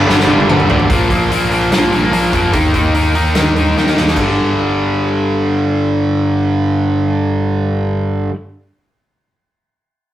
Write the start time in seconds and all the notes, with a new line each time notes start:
Already playing: G2 D3 G3 D4 A4
0.07 G1 G2 D3 G3, snare
0.20 snare
0.28 G1 G2 D3 G3, high tom
0.40 high tom
0.49 G1 G2 D3 G3, mid tom
0.60 mid tom
0.69 A1 G2 D3 G3, floor tom
0.79 floor tom
0.90 A#1 A#2 F3 A#3, kick, open hi-hat
1.10 A#1 A#2 F3 A#3, kick, open hi-hat
1.30 A#1 A#2 F3 A#3, open hi-hat
1.51 A#2 F3 A#3, open hi-hat
1.71 A#1 A#2 F3 A#3, snare, open hi-hat
1.91 A#1 A#2 F3 A#3, open hi-hat
2.12 A#1 A#2 F3 A#3, open hi-hat
2.33 F2 A#2 F3 A#3, kick, open hi-hat
2.53 D#2 D#3 A#3 D#4, kick, open hi-hat
2.74 D#2 D#3 A#3 D#4, kick, open hi-hat
2.94 D#2 D#3 A#3 D#4, open hi-hat
3.15 D#3 A#3 D#4, open hi-hat
3.35 D#2 D#3 A#3 D#4, snare, open hi-hat
3.46 snare
3.56 D#2 D#3 A#3 D#4, open hi-hat
3.76 D#2 D#3 A#3 D#4, snare
3.87 snare
3.97 D#2 D#3 A#3 D#4, snare
4.07 snare
4.16 G1 G2 D3, kick, crash
4.21 G3